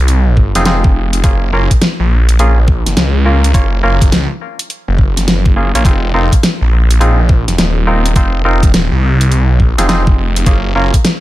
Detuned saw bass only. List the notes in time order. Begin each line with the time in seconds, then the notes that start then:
Already playing: C2
0.55 F1
0.95 F1
1.24 F#1
1.52 F#1
2.00 A#1
2.86 F#1
2.97 C#2
3.54 F#1
3.83 F#1
4.12 C#2
4.88 F#1
5.74 A#1
5.85 F1
6.14 F1
6.61 A#1
7.47 F1
7.58 D#1
8.16 F1
8.44 F1
8.73 D#1
8.92 C2
9.51 B1
9.78 F1
10.17 F1
10.46 F#1
10.75 F#1